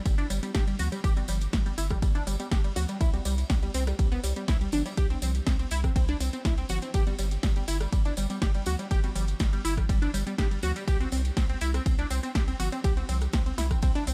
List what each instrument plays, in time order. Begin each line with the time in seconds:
0.05 sub bass G1, synth arpeggio sound G3, kick, closed hi-hat, ride, tambourine, high conga
0.18 synth arpeggio sound D4, closed hi-hat, tambourine
0.30 sub bass G1, synth arpeggio sound G3, open hi-hat, tambourine, high bongo
0.43 synth arpeggio sound G3, closed hi-hat, tambourine, high conga
0.55 sub bass G1, synth arpeggio sound G4, kick, snare, closed hi-hat, ride, tambourine
0.67 synth arpeggio sound G3, closed hi-hat, tambourine
0.79 sub bass D2, synth arpeggio sound F#4, open hi-hat, tambourine, high conga, low conga
0.92 synth arpeggio sound G3, closed hi-hat, tambourine, high bongo
1.04 sub bass G1, synth arpeggio sound G4, kick, closed hi-hat, ride, tambourine
1.16 synth arpeggio sound G3, closed hi-hat, tambourine, high conga
1.28 sub bass G1, synth arpeggio sound G3, open hi-hat, tambourine, high bongo, low conga
1.41 closed hi-hat, tambourine
1.53 sub bass G1, synth arpeggio sound G3, kick, snare, closed hi-hat, ride, tambourine
1.66 synth arpeggio sound G3, closed hi-hat, tambourine, high conga
1.78 sub bass G1, synth arpeggio sound E4, open hi-hat, tambourine
1.89 synth arpeggio sound G3, kick, cross-stick, closed hi-hat, tambourine, low conga
2.02 sub bass G1, synth arpeggio sound G3, kick, closed hi-hat, ride, tambourine, high conga
2.15 synth arpeggio sound D4, closed hi-hat, tambourine
2.27 sub bass G1, synth arpeggio sound G3, open hi-hat, tambourine, high bongo
2.40 synth arpeggio sound G3, closed hi-hat, tambourine, high conga
2.52 sub bass G1, synth arpeggio sound G4, kick, snare, closed hi-hat, ride, tambourine
2.64 synth arpeggio sound G3, closed hi-hat, tambourine
2.76 sub bass D2, synth arpeggio sound F#4, open hi-hat, tambourine, high bongo, high conga, low conga
2.88 synth arpeggio sound G3, closed hi-hat, tambourine
3.01 sub bass C2, synth arpeggio sound E4, kick, closed hi-hat, ride, tambourine
3.13 synth arpeggio sound G3, closed hi-hat, tambourine, high conga
3.25 sub bass C2, synth arpeggio sound G3, open hi-hat, tambourine, high bongo
3.38 closed hi-hat, tambourine
3.50 sub bass C2, synth arpeggio sound G3, kick, snare, closed hi-hat, ride, tambourine
3.62 synth arpeggio sound G3, closed hi-hat, tambourine, high conga
3.74 sub bass C2, synth arpeggio sound C4, open hi-hat, tambourine
3.87 synth arpeggio sound G3, cross-stick, closed hi-hat, tambourine
3.99 sub bass C2, synth arpeggio sound G3, kick, closed hi-hat, ride, tambourine, high conga
4.12 synth arpeggio sound B3, closed hi-hat, tambourine
4.24 sub bass C2, synth arpeggio sound G3, open hi-hat, tambourine, high bongo
4.36 synth arpeggio sound G3, closed hi-hat, tambourine, high conga
4.48 sub bass C2, synth arpeggio sound E4, kick, snare, closed hi-hat, ride, tambourine
4.61 synth arpeggio sound G3, closed hi-hat, tambourine
4.72 sub bass G1, synth arpeggio sound D4, open hi-hat, tambourine, high conga, low conga
4.86 synth arpeggio sound G3, closed hi-hat, tambourine, high bongo
4.97 sub bass C2, synth arpeggio sound G4, kick, closed hi-hat, ride, tambourine
5.10 synth arpeggio sound C4, closed hi-hat, tambourine, high conga
5.22 sub bass C2, synth arpeggio sound C4, open hi-hat, tambourine, high bongo, low conga
5.35 closed hi-hat, tambourine
5.47 sub bass C2, synth arpeggio sound C4, kick, snare, closed hi-hat, ride, tambourine
5.59 synth arpeggio sound C4, closed hi-hat, tambourine, high conga
5.71 sub bass C2, synth arpeggio sound E4, open hi-hat, tambourine
5.84 synth arpeggio sound C4, kick, cross-stick, closed hi-hat, tambourine, low conga
5.96 sub bass C2, synth arpeggio sound C4, kick, closed hi-hat, ride, tambourine, high conga
6.08 synth arpeggio sound D4, closed hi-hat, tambourine
6.20 sub bass C2, synth arpeggio sound C4, open hi-hat, tambourine, high bongo
6.33 synth arpeggio sound C4, closed hi-hat, tambourine, high conga
6.45 sub bass C2, synth arpeggio sound E4, kick, snare, closed hi-hat, ride, tambourine
6.58 synth arpeggio sound C4, closed hi-hat, tambourine
6.69 sub bass G1, synth arpeggio sound F#4, open hi-hat, tambourine, high bongo, high conga, low conga
6.82 synth arpeggio sound C4, closed hi-hat, tambourine
6.94 sub bass G1, synth arpeggio sound G4, kick, closed hi-hat, ride, tambourine
7.07 synth arpeggio sound G3, closed hi-hat, tambourine, high conga
7.19 sub bass G1, synth arpeggio sound G3, open hi-hat, tambourine, high bongo
7.31 closed hi-hat, tambourine
7.43 sub bass G1, synth arpeggio sound G3, kick, snare, closed hi-hat, ride, tambourine
7.56 synth arpeggio sound G3, closed hi-hat, tambourine, high conga
7.68 sub bass G1, synth arpeggio sound E4, open hi-hat, tambourine
7.81 synth arpeggio sound G3, cross-stick, closed hi-hat, tambourine
7.92 sub bass G1, synth arpeggio sound G3, kick, closed hi-hat, ride, tambourine, high conga
8.05 synth arpeggio sound D4, closed hi-hat, tambourine
8.17 sub bass G1, synth arpeggio sound G3, open hi-hat, tambourine, high bongo
8.30 synth arpeggio sound G3, closed hi-hat, tambourine, high conga
8.42 sub bass G1, synth arpeggio sound G4, kick, snare, closed hi-hat, ride, tambourine
8.55 synth arpeggio sound G3, closed hi-hat, tambourine
8.66 sub bass D2, synth arpeggio sound F#4, open hi-hat, tambourine, high conga, low conga
8.79 synth arpeggio sound G3, closed hi-hat, tambourine, high bongo
8.91 sub bass G1, synth arpeggio sound G4, kick, closed hi-hat, ride, tambourine
9.03 synth arpeggio sound G3, closed hi-hat, tambourine, high conga
9.15 sub bass G1, synth arpeggio sound G3, open hi-hat, tambourine, high bongo, low conga
9.28 closed hi-hat, tambourine
9.40 sub bass G1, synth arpeggio sound G3, kick, snare, closed hi-hat, ride, tambourine
9.53 synth arpeggio sound G3, closed hi-hat, tambourine, high conga
9.65 sub bass G1, synth arpeggio sound E4, open hi-hat, tambourine
9.77 synth arpeggio sound G3, kick, cross-stick, closed hi-hat, tambourine, low conga
9.89 sub bass G1, synth arpeggio sound G3, kick, closed hi-hat, ride, tambourine, high conga
10.02 synth arpeggio sound D4, closed hi-hat, tambourine
10.14 sub bass G1, synth arpeggio sound G3, open hi-hat, tambourine, high bongo
10.27 synth arpeggio sound G3, closed hi-hat, tambourine, high conga
10.38 sub bass G1, synth arpeggio sound G4, kick, snare, closed hi-hat, ride, tambourine
10.51 synth arpeggio sound G3, closed hi-hat, tambourine
10.63 sub bass D2, synth arpeggio sound F#4, open hi-hat, tambourine, high bongo, high conga, low conga
10.76 synth arpeggio sound G3, closed hi-hat, tambourine
10.88 sub bass C2, synth arpeggio sound G4, kick, closed hi-hat, ride, tambourine
11.00 synth arpeggio sound C4, closed hi-hat, tambourine, high conga
11.12 sub bass C2, synth arpeggio sound C4, open hi-hat, tambourine, high bongo
11.25 closed hi-hat, tambourine
11.37 sub bass C2, synth arpeggio sound C4, kick, snare, closed hi-hat, ride, tambourine
11.49 synth arpeggio sound C4, closed hi-hat, tambourine, high conga
11.61 sub bass C2, synth arpeggio sound E4, open hi-hat, tambourine
11.74 synth arpeggio sound C4, cross-stick, closed hi-hat, tambourine
11.86 sub bass C2, synth arpeggio sound C4, kick, closed hi-hat, ride, tambourine, high conga
11.98 synth arpeggio sound D4, closed hi-hat, tambourine
12.10 sub bass C2, synth arpeggio sound C4, open hi-hat, tambourine, high bongo
12.23 synth arpeggio sound C4, closed hi-hat, tambourine, high conga
12.35 sub bass C2, synth arpeggio sound G4, kick, snare, closed hi-hat, ride, tambourine
12.48 synth arpeggio sound C4, closed hi-hat, tambourine
12.60 sub bass G1, synth arpeggio sound F#4, open hi-hat, tambourine, high conga, low conga
12.72 synth arpeggio sound C4, closed hi-hat, tambourine, high bongo
12.84 sub bass C2, synth arpeggio sound G4, kick, closed hi-hat, ride, tambourine
12.97 synth arpeggio sound C4, closed hi-hat, tambourine, high conga
13.09 sub bass C2, synth arpeggio sound C4, open hi-hat, tambourine, high bongo, low conga
13.21 cross-stick, closed hi-hat, tambourine
13.33 sub bass C2, synth arpeggio sound C4, kick, snare, closed hi-hat, ride, tambourine
13.46 synth arpeggio sound C4, closed hi-hat, tambourine, high conga
13.58 sub bass C2, synth arpeggio sound E4, snare, open hi-hat, tambourine
13.71 synth arpeggio sound C4, kick, cross-stick, closed hi-hat, tambourine, low conga
13.82 sub bass C2, synth arpeggio sound C4, kick, closed hi-hat, ride, tambourine, high conga
13.95 synth arpeggio sound D4, closed hi-hat, tambourine
14.07 sub bass C2, synth arpeggio sound C4, open hi-hat, tambourine, high bongo